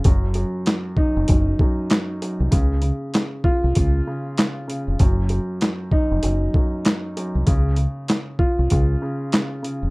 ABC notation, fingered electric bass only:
X:1
M:4/4
L:1/16
Q:"Swing 16ths" 1/4=97
K:Db
V:1 name="Fingered electric bass" clef=bass
G,,,3 z4 F,,, G,,,2 z4 z C,, | D,,3 z4 C,, D,,2 z4 z F,,, | G,,,3 z4 F,,, G,,,2 z4 z C,, | D,,3 z4 C,, D,,2 z4 z F,,, |]